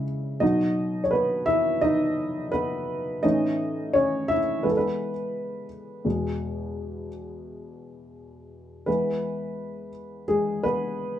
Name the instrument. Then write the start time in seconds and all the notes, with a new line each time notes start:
upright piano
Already playing: C#3 G#3 E4
0.40 B2 F#3 D#4 F#4 D#5
1.04 C#5
1.11 B3 B4
1.46 E4 E5
1.81 D#4 D#5
2.52 B3 B4
3.23 A2 E3 C#4 D#4 D#5
3.93 C#4 C#5
4.28 E4 E5
4.63 E3 G#3 B3 B4
4.70 A4
4.77 B3 B4
6.05 E2 B2 G#3
8.86 E3 G#3 B3 B4
10.28 G#3 G#4
10.63 B3 B4